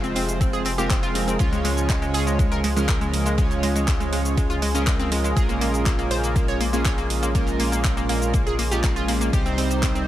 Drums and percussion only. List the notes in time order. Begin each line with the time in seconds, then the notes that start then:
0.04 closed hi-hat, cabasa
0.15 open hi-hat, ride
0.28 snare, closed hi-hat, cabasa
0.41 kick, closed hi-hat, ride, cabasa
0.53 closed hi-hat, cabasa
0.65 open hi-hat, ride
0.78 closed hi-hat, cabasa
0.90 kick, snare, clap, closed hi-hat, ride, cabasa
1.03 snare, closed hi-hat, cabasa
1.15 open hi-hat, ride
1.28 closed hi-hat, cabasa
1.39 kick, closed hi-hat, ride, cabasa
1.53 closed hi-hat, cabasa
1.65 open hi-hat, ride
1.77 closed hi-hat, ride, cabasa
1.89 kick, snare, clap, closed hi-hat, ride, cabasa
2.02 closed hi-hat, cabasa
2.14 open hi-hat, ride
2.27 closed hi-hat, cabasa
2.39 kick, closed hi-hat, ride, cabasa
2.52 closed hi-hat, cabasa
2.64 open hi-hat, ride
2.77 closed hi-hat, cabasa
2.88 kick, snare, clap, closed hi-hat, ride, cabasa
3.01 closed hi-hat, cabasa
3.14 open hi-hat, ride
3.25 closed hi-hat, ride, cabasa
3.38 kick, closed hi-hat, ride, cabasa
3.51 clap, closed hi-hat, cabasa
3.63 open hi-hat, ride
3.76 closed hi-hat, cabasa
3.87 kick, snare, clap, closed hi-hat, ride, cabasa
4.00 closed hi-hat, cabasa
4.12 open hi-hat, ride
4.25 snare, closed hi-hat, cabasa
4.37 kick, closed hi-hat, ride, cabasa
4.50 closed hi-hat, cabasa
4.62 open hi-hat, ride
4.75 closed hi-hat, cabasa
4.87 kick, snare, clap, closed hi-hat, ride, cabasa
5.00 snare, closed hi-hat, cabasa
5.12 open hi-hat, ride
5.24 closed hi-hat, cabasa
5.36 kick, closed hi-hat, ride, cabasa
5.49 closed hi-hat, cabasa
5.61 open hi-hat, ride
5.74 closed hi-hat, ride, cabasa
5.86 kick, snare, clap, closed hi-hat, ride, cabasa
5.99 closed hi-hat, cabasa
6.11 open hi-hat, ride
6.24 closed hi-hat, cabasa
6.36 kick, closed hi-hat, ride, cabasa
6.48 closed hi-hat, cabasa
6.60 open hi-hat, ride
6.73 closed hi-hat, cabasa
6.85 kick, snare, clap, closed hi-hat, ride, cabasa
6.98 closed hi-hat, cabasa
7.10 open hi-hat, ride
7.23 closed hi-hat, ride, cabasa
7.35 kick, closed hi-hat, ride, cabasa
7.47 clap, closed hi-hat, cabasa
7.59 open hi-hat, ride
7.72 closed hi-hat, cabasa
7.84 kick, snare, clap, closed hi-hat, ride, cabasa
7.97 closed hi-hat, cabasa
8.09 open hi-hat, ride
8.22 snare, closed hi-hat, cabasa
8.33 kick, closed hi-hat, ride, cabasa
8.47 closed hi-hat, cabasa
8.59 open hi-hat, ride
8.71 closed hi-hat, cabasa
8.83 kick, snare, clap, closed hi-hat, ride, cabasa
8.96 closed hi-hat, cabasa
9.08 open hi-hat, ride
9.21 closed hi-hat, cabasa
9.33 kick, closed hi-hat, ride, cabasa
9.46 closed hi-hat, cabasa
9.58 open hi-hat, ride
9.71 closed hi-hat, ride, cabasa
9.83 kick, snare, clap, closed hi-hat, ride, cabasa
9.96 closed hi-hat, cabasa